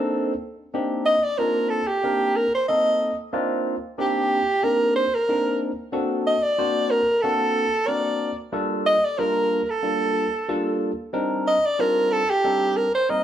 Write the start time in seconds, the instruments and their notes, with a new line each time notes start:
Already playing: tine electric piano A#3 C4 D4 D#4 A4
0.74 tine electric piano A#3 C4 D4 D#4 G4
1.06 soprano saxophone D#5
1.24 soprano saxophone D5
1.38 tine electric piano A#3 C4 D4 D#4 F4, soprano saxophone A#4
1.70 soprano saxophone A4
1.87 soprano saxophone G4
2.03 tine electric piano A#3 C4 D4 D#4 A#4
2.36 soprano saxophone A#4
2.55 soprano saxophone C5
2.68 tine electric piano A#3 C4 D#4 A4, soprano saxophone D#5
3.33 tine electric piano A#3 C4 D4 D#4 F4
3.98 tine electric piano A#3 C4 D4 D#4 G4, soprano saxophone G4
4.63 tine electric piano A#3 C4 D4 D#4 G4, soprano saxophone A#4
4.95 soprano saxophone C5
5.15 soprano saxophone A#4
5.29 tine electric piano A#3 C4 D4 D#4 A#4
5.92 tine electric piano A#3 C4 D4 F#4 A4
6.27 soprano saxophone D#5
6.43 soprano saxophone D5
6.58 tine electric piano A#3 C4 D4 F#4 C5
6.91 soprano saxophone A#4
7.22 tine electric piano A#3 C4 D4 F#4 A4, soprano saxophone A4
7.87 tine electric piano A#3 C4 D4 F#4 A#4, soprano saxophone D5
8.52 tine electric piano G3 A#3 D4 F4 A4
8.86 soprano saxophone D#5
9.05 soprano saxophone D5
9.18 tine electric piano G3 A#3 D4 F4 A#4, soprano saxophone A#4
9.63 soprano saxophone A#4
9.70 soprano saxophone A4
9.83 tine electric piano G3 A#3 D4 F4 A4
10.48 tine electric piano G3 A#3 D4 F4 A4
11.13 tine electric piano G3 C4 D4 D#4 A#4
11.47 soprano saxophone D#5
11.66 soprano saxophone D5
11.79 tine electric piano G3 C4 D4 D#4 F4, soprano saxophone A#4
12.12 soprano saxophone A4
12.30 soprano saxophone G4
12.44 tine electric piano G3 C4 D4 D#4 A4
12.77 soprano saxophone A#4
12.94 soprano saxophone C5
13.09 tine electric piano G3 A#3 C4 D#4 A#4, soprano saxophone D#5